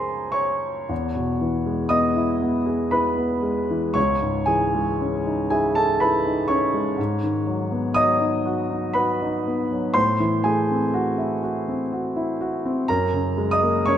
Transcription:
Already playing: C#2 F3 G#3 C#4 D#4 G#4 A#4 C5 C#5 G#5 A#5 C6
0.32 C#5 C#6
0.89 E2
1.15 B2
1.41 E3
1.66 G#3
1.89 B3 D#5 D#6
2.16 E4
2.42 B3
2.66 G#4
2.91 E4 B4 B5
3.17 B3
3.43 G#3
3.70 E3
3.94 C#2 C#5 C#6
4.21 G#2
4.46 E3 G#4 G#5
4.74 G#3
5.01 C#4
5.27 D#4
5.50 E4 G#4 G#5
5.75 D#4 A4 A5
6.00 E4 B4 B5
6.27 D#4
6.48 C#4 C#5 C#6
6.74 G#3
6.98 G#2
7.23 D#3
7.47 F#3
7.72 B3
7.94 F#3 D#5 D#6
8.21 D#4
8.46 F#4
8.70 D#4
8.93 F#4 B4 B5
9.22 D#4
9.47 B3
9.72 F#3
9.94 A2 C5 C6
10.20 E3
10.44 A3 G#4 G#5
10.71 C4
10.94 F#4
11.18 E4
11.43 F#4
11.68 C4
11.93 F#4
12.16 E4
12.41 F#4
12.66 C4
12.88 F#2 A#4 A#5
13.13 C#3
13.38 G#3
13.51 D#5 D#6
13.62 A#3
13.86 C#4 C#5 C#6

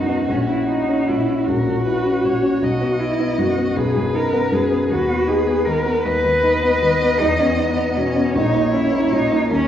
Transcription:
Already playing: B1 F#2 B3 D#4 F#4
0.08 B3
0.27 A#1 C#4
0.48 C#4 E4
0.68 D#4 E4
0.89 C#4
1.07 A#2 E4
1.28 C#4
1.47 A#1 F#4 A#4
1.67 A#2
1.85 E4 B4
2.06 C#4
2.24 A#2 C#5
2.43 C#4
2.62 B1 F#4 D#5
2.81 B3
3.00 D#4 E4
3.19 B3
3.38 F#2 F#4
3.58 B3
3.76 B1 G#4 B4
3.96 F#2
4.14 D#4 A#4
4.33 B3
4.52 F#2 G#4
4.71 B3
4.89 D#2 F#4 B4
5.09 B3
5.27 D#4 G#4
5.47 B3
5.65 D#3 A#4
5.86 B3
6.03 D#2 B4 D#5
6.24 D#3
6.43 D#4
6.63 B3
6.82 D#3
7.02 B3
7.20 E2 D#4
7.40 B3 C#4
7.58 B3 D#4
7.77 B3
7.96 B2 C#4
8.16 B3
8.35 A#1 D#4 C#5
8.54 A#3
8.73 C#4 E4
8.92 A#3
9.11 A#2 D#4
9.31 A#3
9.50 D#2 C#4 A#4

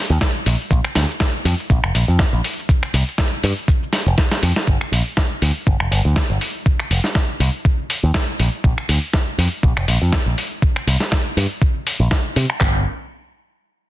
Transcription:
0.10 D#2, shaker
0.21 kick, snare, shaker
0.36 shaker
0.46 A#1, open hi-hat, shaker
0.61 shaker
0.71 A#1, kick, shaker
0.85 finger snap, shaker
0.95 D2, snare, open hi-hat, shaker
1.10 shaker
1.20 kick, snare, shaker
1.35 shaker
1.45 F2, open hi-hat, shaker
1.59 shaker
1.70 A#1, kick, shaker
1.83 F1, finger snap, shaker
1.95 A#1, open hi-hat, shaker
2.08 F2, shaker
2.19 kick, snare, shaker
2.33 A#1, shaker
2.44 open hi-hat, shaker
2.59 shaker
2.69 kick, shaker
2.83 finger snap, shaker
2.94 C2, open hi-hat, shaker
3.08 shaker
3.18 kick, snare, shaker
3.33 shaker
3.44 G2, open hi-hat, shaker
3.58 shaker
3.68 kick, shaker
3.83 shaker
3.93 snare, open hi-hat, shaker
4.06 F1, shaker
4.18 kick, snare, shaker
4.31 snare, shaker
4.43 F2, open hi-hat, shaker
4.56 snare, shaker
4.67 G1, kick
4.81 finger snap
4.92 A#1, open hi-hat
5.17 kick, snare
5.42 D2, open hi-hat
5.67 G1, kick
5.80 F1, finger snap
5.91 G1, open hi-hat
6.05 D2
6.16 kick, snare
6.30 G1
6.41 open hi-hat
6.66 kick
6.80 finger snap
6.91 F1, open hi-hat
7.04 snare
7.15 kick, snare
7.40 C2, open hi-hat
7.65 kick
7.90 open hi-hat
8.03 D#2
8.14 kick, snare
8.40 A#1, open hi-hat
8.64 A#1, kick
8.78 finger snap
8.89 D2, open hi-hat
9.13 kick, snare
9.38 F2, open hi-hat
9.63 A#1, kick
9.77 F1, finger snap
9.88 A#1, open hi-hat
10.02 F2
10.12 kick, snare
10.26 A#1
10.38 open hi-hat
10.62 kick
10.76 finger snap
10.87 C2, open hi-hat
11.00 snare
11.12 kick, snare
11.37 G2, open hi-hat
11.62 kick
11.87 open hi-hat
12.00 A#1
12.11 kick, snare
12.36 C3, open hi-hat
12.50 finger snap
12.61 G1, kick, clap, floor tom

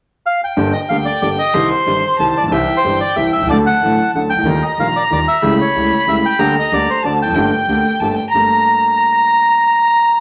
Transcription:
0.26 F5
0.44 G5
0.57 G1 G2 D3 G3 A#3 G4 G5
0.73 D#5
0.89 D2 D3 G3 A#3 G4 F5
1.05 D5
1.22 G1 G2 D3 G3 A#3 G4 D5
1.39 D#5
1.54 C2 C3 D#3 G3 C4 G4 C6
1.70 C5
1.86 G1 G2 D#3 G3 C4 G4
2.18 C2 C3 D#3 G3 C4 G4 A5
2.37 A1 D5
2.44 A#1
2.48 B1 C2 C3 E3 G3 C4
2.52 G4 E5 G5
2.77 C5
2.84 G1 G2 E3 G3 C4 G4
3.01 D5
3.16 C2 C3 E3 G3 C4 G4 E5
3.33 B1 E5
3.38 B1 C2
3.43 C2 C#2
3.47 C#2 D2 D3 F#3 A3 F#4 D5 A5
3.66 F#5
3.82 A1 A2 D3 F#3 A3 F#4
4.14 D2 D3 F#3 A3 F#4 F#5
4.30 G5
4.34 C2 C#2
4.39 C#2
4.43 D2 D#2 D#3 G3 A#3 F4
4.47 A#5
4.63 D#5
4.78 A#1 A#2 D#3 G3 A#3 F4 F5
4.96 D5
5.10 D#2 D#3 G3 A#3 F4 D5
5.28 E5
5.42 C#2 C#3 G3 A3 E4 B5
5.61 C#5
5.75 C#2 C#3 G3 A3 E4
6.07 C#2 C#3 G3 A3 E4 E5
6.26 G5
6.39 D2 D3 G3 A#3 G4 A#5
6.59 D#5
6.72 D2 D3 G3 A#3 G4 D5
6.90 C5
7.03 D2 D3 A3 C4 F#4 D5 A5
7.22 E1 E2 G5
7.27 F1 F2
7.32 F#1 G1 F#2 D3 G5
7.36 G1 G2 A3 A#3 G4
7.67 D2 D3 A3 A#3 G4
8.00 G1 G2 D3 A3 A#3 G4 A5
8.16 G5
8.31 G1 G2 A3 A#3 G4 A#5

